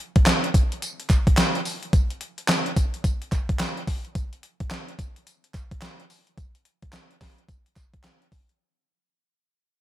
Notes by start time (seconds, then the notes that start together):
0.16 kick, closed hi-hat
0.26 snare, clap, closed hi-hat, tambourine
0.44 closed hi-hat
0.54 kick, closed hi-hat, tambourine
0.72 closed hi-hat
0.82 closed hi-hat, tambourine
1.00 closed hi-hat
1.10 kick, clap, closed hi-hat, tambourine
1.27 kick, closed hi-hat
1.37 snare, clap, closed hi-hat, tambourine
1.55 closed hi-hat
1.65 open hi-hat, tambourine
1.83 closed hi-hat
1.93 kick, closed hi-hat, tambourine
2.10 closed hi-hat
2.21 closed hi-hat
2.38 closed hi-hat
2.48 snare, clap, closed hi-hat, tambourine
2.66 closed hi-hat
2.77 kick, closed hi-hat, tambourine
2.94 closed hi-hat
3.04 kick, closed hi-hat, tambourine
3.22 closed hi-hat
3.32 kick, clap, closed hi-hat, tambourine
3.49 kick, closed hi-hat
3.59 snare, clap, closed hi-hat, tambourine
3.77 closed hi-hat
3.87 kick, open hi-hat, tambourine
4.05 closed hi-hat
4.15 kick, closed hi-hat, tambourine
4.33 closed hi-hat
4.43 closed hi-hat
4.60 kick, closed hi-hat
4.71 snare, clap, closed hi-hat, tambourine
4.88 closed hi-hat
4.99 kick, closed hi-hat, tambourine
5.16 closed hi-hat
5.27 closed hi-hat, tambourine
5.44 closed hi-hat
5.54 kick, clap, closed hi-hat, tambourine
5.71 kick, closed hi-hat
5.82 snare, clap, closed hi-hat, tambourine
6.00 closed hi-hat
6.10 open hi-hat, tambourine
6.27 closed hi-hat
6.38 kick, closed hi-hat, tambourine
6.55 closed hi-hat
6.65 closed hi-hat
6.82 kick, closed hi-hat
6.93 snare, clap, closed hi-hat, tambourine
7.11 closed hi-hat
7.21 kick, snare, open hi-hat, tambourine
7.38 closed hi-hat
7.49 kick, closed hi-hat, tambourine
7.66 closed hi-hat
7.76 kick, clap, closed hi-hat, tambourine
7.94 kick, closed hi-hat
8.04 snare, clap, closed hi-hat, tambourine
8.22 closed hi-hat
8.32 kick, open hi-hat, tambourine
8.49 closed hi-hat